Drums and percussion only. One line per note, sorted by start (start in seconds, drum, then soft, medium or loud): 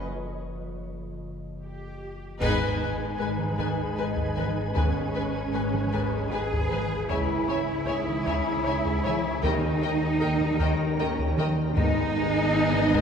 2.41 concert bass drum medium
2.41 taiko medium
2.41 crash medium
3.39 taiko mid soft
3.59 taiko medium
4.17 taiko medium
4.38 taiko mid medium
4.77 taiko medium
5.74 taiko mid soft
5.94 taiko medium
6.52 taiko medium
6.72 taiko mid medium
7.10 taiko medium
8.08 taiko mid soft
8.27 taiko medium
8.86 taiko medium
9.05 taiko mid medium
9.44 taiko medium
10.41 taiko mid soft
10.60 taiko medium
11.18 taiko medium
11.38 taiko mid medium
11.77 taiko loud
12.74 taiko mid medium
12.93 taiko medium